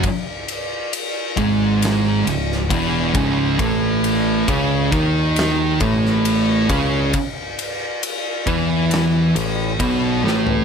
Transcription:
<<
  \new Staff \with { instrumentName = "Distorted electric guitar" } { \clef bass \time 4/4 \key a \lydian \tempo 4 = 68 r4. <gis, gis>4 cis,8 <e, e>8 <cis, cis>8 | <a, a>4 <cis cis'>8 <dis dis'>4 <a, a>4 <cis cis'>8 | r4. <e e'>4 a,8 <b, b>8 <a, a>8 | }
  \new Staff \with { instrumentName = "Distorted electric guitar" } { \clef bass \time 4/4 \key a \lydian r4. <gis, gis>4 cis,8 <e, e>8 <cis, cis>8 | <a, a>4 <cis cis'>8 <dis dis'>4 <a, a>4 <cis cis'>8 | r4. <e e'>4 a,8 <b, b>8 <a, a>8 | }
  \new Staff \with { instrumentName = "Picked electric bass" } { \clef bass \time 4/4 \key a \lydian r4. gis,,4 cis,,8 e,,8 cis,,8 | a,,4 cis,8 dis,4 a,,4 cis,8 | r4. e,4 a,,8 b,,8 a,,8 | }
  \new DrumStaff \with { instrumentName = "Drums" } \drummode { \time 4/4 <bd cymr>8 cymr8 cymr8 <bd cymr>8 <cymr sn>8 cymr16 sn16 <bd cymr>8 <bd cymr>8 | <bd cymr>8 cymr8 <bd cymr>8 <bd cymr>8 <cymr sn>8 <bd cymr>16 sn16 cymr8 <bd cymr>8 | <bd cymr>8 cymr8 cymr8 <bd cymr>8 <cymr sn>8 cymr8 <bd cymr>8 sn16 tomfh16 | }
>>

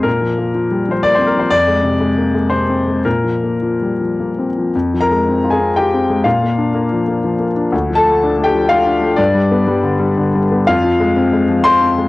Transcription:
<<
  \new Staff \with { instrumentName = "Grand piano" } { \time 3/4 \key f \dorian \tempo 4 = 121 bes'4.~ bes'16 c''16 d''16 c''16 bes'16 c''16 | d''2 c''4 | bes'2~ bes'8 r8 | r8 <bes' bes''>4 <aes' aes''>8 <g' g''>4 |
<f' f''>2~ <f' f''>8 r8 | r8 <a' a''>4 <g' g''>8 <f' f''>4 | <d' d''>2~ <d' d''>8 r8 | <f' f''>2 <c'' c'''>4 | }
  \new Staff \with { instrumentName = "Grand piano" } { \clef bass \time 3/4 \key f \dorian \tuplet 3/2 { bes,8 f8 bes8 f8 g8 f8 bes8 c'8 f8 } | \tuplet 3/2 { f,8 aes8 c8 aes8 bes8 aes8 c8 c'8 aes8 } | \tuplet 3/2 { bes,8 f8 bes8 f8 g8 f8 bes8 c'8 f8 } | \tuplet 3/2 { f,8 f8 aes8 c'8 f'8 c'8 f'8 c'8 aes8 } |
\tuplet 3/2 { bes,8 bes8 d'8 bes8 f8 bes8 f8 bes8 d'8 } | \tuplet 3/2 { d,8 f8 a8 d'8 a8 f8 a8 d'8 a8 } | \tuplet 3/2 { g,8 g8 b8 g8 d8 g8 d8 g8 b8 } | \tuplet 3/2 { f,8 f8 aes8 c'8 aes8 f8 aes8 c'8 aes8 } | }
>>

